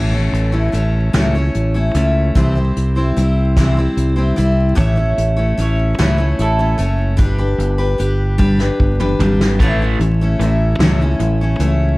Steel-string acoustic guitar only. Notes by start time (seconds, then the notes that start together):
Already playing: A2 E3 A3 C#4 E4 C#5
0.12 A3 C#4 E4 C#5
0.52 A3 C#4 E4 C#5
0.72 A3 C#4 E4 C#5
1.13 A2 E3 A3 C#4 E4 C#5
1.35 A3 C#4 E4 C#5
1.74 A3 C#4 E4 C#5
1.95 A3 C#4 E4 C#5
2.35 C3 E3 G3 C4 E4 C5
2.55 G3 C4 E4 C5
2.96 G3 C4 E4 C5
3.17 G3 C4 E4 C5
3.58 C3 E3 G3 C4 E4 C5
3.77 G3 C4 E4 C5
4.16 G3 C4 E4 C5
4.36 G3 C4 E4 C5
4.75 A2 E3 A3 C#4 E4 C#5
4.96 A3 C#4 E4 C#5
5.37 A3 C#4 E4 C#5
5.58 A3 C#4 E4 C#5
5.99 A2 E3 A3 C#4 E4 C#5
6.18 A3 C#4 E4 C#5
6.59 A3 C#4 E4 C#5
6.78 A3 C#4 E4 C#5
7.17 G3 D4 G4 B4
7.38 D4 G4 B4
7.78 D4 G4 B4
7.98 G3 D4 G4 B4
8.38 G3 D4 G4 B4
8.59 D4 G4 B4
9.00 D4 G4 B4
9.21 G3 D4 G4 B4
9.61 A2 E3 A3 C#4 E4 C#5
9.82 A3 C#4 E4 C#5
10.21 A3 C#4 E4 C#5
10.41 A3 C#4 E4 C#5
10.81 A2 E3 A3 C#4 E4 C#5
11.01 A3 C#4 E4 C#5
11.41 A3 C#4 E4 C#5
11.60 A3 C#4 E4 C#5